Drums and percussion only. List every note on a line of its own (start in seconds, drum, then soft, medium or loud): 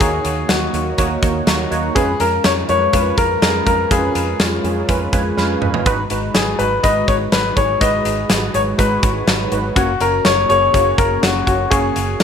0.00 kick loud
0.00 closed hi-hat medium
0.25 closed hi-hat medium
0.49 snare loud
0.49 closed hi-hat medium
0.74 closed hi-hat medium
0.98 kick medium
0.98 closed hi-hat medium
1.23 kick medium
1.23 closed hi-hat medium
1.47 snare loud
1.47 closed hi-hat medium
1.72 closed hi-hat medium
1.96 kick loud
1.96 closed hi-hat medium
2.20 closed hi-hat medium
2.44 snare loud
2.44 closed hi-hat medium
2.69 closed hi-hat medium
2.93 kick medium
2.93 closed hi-hat medium
3.18 kick medium
3.18 closed hi-hat medium
3.42 snare loud
3.42 closed hi-hat medium
3.67 kick medium
3.67 closed hi-hat medium
3.91 kick loud
3.91 closed hi-hat medium
4.15 closed hi-hat medium
4.40 snare loud
4.40 closed hi-hat medium
4.65 closed hi-hat medium
4.89 kick medium
4.89 closed hi-hat medium
5.13 kick medium
5.13 closed hi-hat medium
5.38 snare soft
5.62 mid tom medium
5.74 floor tom medium
5.86 kick loud
5.86 closed hi-hat medium
6.10 closed hi-hat medium
6.35 snare loud
6.35 closed hi-hat medium
6.59 closed hi-hat medium
6.84 kick medium
6.84 closed hi-hat medium
7.08 kick medium
7.08 closed hi-hat medium
7.32 snare loud
7.32 closed hi-hat medium
7.57 kick medium
7.57 closed hi-hat medium
7.81 kick loud
7.81 closed hi-hat medium
8.05 closed hi-hat medium
8.30 snare loud
8.30 closed hi-hat medium
8.54 closed hi-hat medium
8.79 kick medium
8.79 closed hi-hat medium
9.03 kick loud
9.03 closed hi-hat medium
9.27 snare loud
9.27 closed hi-hat medium
9.52 closed hi-hat medium
9.76 kick loud
9.76 closed hi-hat medium
10.01 closed hi-hat medium
10.25 snare loud
10.25 closed hi-hat medium
10.50 closed hi-hat medium
10.74 kick medium
10.74 closed hi-hat medium
10.98 kick medium
10.98 closed hi-hat medium
11.23 snare loud
11.23 closed hi-hat medium
11.47 kick medium
11.47 closed hi-hat medium
11.71 kick loud
11.71 closed hi-hat medium
11.96 closed hi-hat medium
12.20 snare loud
12.20 closed hi-hat medium